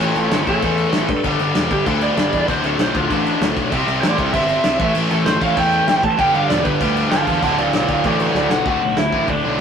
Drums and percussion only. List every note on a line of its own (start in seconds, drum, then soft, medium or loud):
0.01 crash medium
0.16 crash medium
0.31 snare loud
0.31 crash medium
0.47 kick loud
0.47 crash medium
0.62 kick loud
0.62 crash medium
0.78 crash medium
0.93 snare loud
0.93 crash medium
1.08 kick loud
1.08 crash medium
1.24 kick loud
1.24 crash medium
1.39 crash medium
1.55 snare loud
1.55 crash loud
1.71 kick loud
1.71 crash medium
1.86 kick loud
1.86 crash medium
2.01 crash medium
2.17 snare loud
2.17 crash medium
2.33 kick medium
2.33 crash medium
2.48 kick loud
2.48 crash medium
2.64 crash medium
2.79 snare loud
2.79 crash medium
2.95 kick loud
2.95 crash medium
3.10 kick medium
3.10 crash medium
3.26 crash medium
3.42 snare loud
3.42 crash medium
3.57 kick medium
3.57 crash medium
3.72 kick loud
3.72 crash medium
3.88 crash medium
4.03 snare loud
4.03 crash loud
4.18 kick loud
4.18 crash medium
4.34 kick loud
4.34 crash medium
4.49 crash medium
4.64 snare loud
4.64 crash loud
4.80 kick loud
4.80 crash medium
4.95 crash loud
5.11 crash medium
5.26 snare loud
5.26 crash medium
5.41 kick medium
5.41 crash medium
5.57 kick loud
5.57 crash medium
5.73 crash medium
5.88 snare loud
5.88 crash medium
6.03 kick loud
6.03 crash medium
6.19 kick loud
6.19 crash medium
6.35 crash medium
6.50 snare loud
6.50 crash medium
6.65 kick loud
6.65 crash medium
6.81 kick loud
6.81 crash loud
6.97 crash medium
7.11 snare loud
7.11 crash medium
7.27 kick medium
7.27 crash medium
7.43 kick loud
7.43 crash medium
7.58 crash medium
7.73 snare loud
7.73 crash medium
7.88 kick loud
7.88 crash medium
8.04 kick loud
8.04 crash medium
8.20 crash medium
8.35 snare medium
8.50 snare loud
8.65 kick loud
8.65 crash medium
8.97 snare loud
8.97 crash medium
9.13 kick medium
9.28 kick medium
9.28 crash medium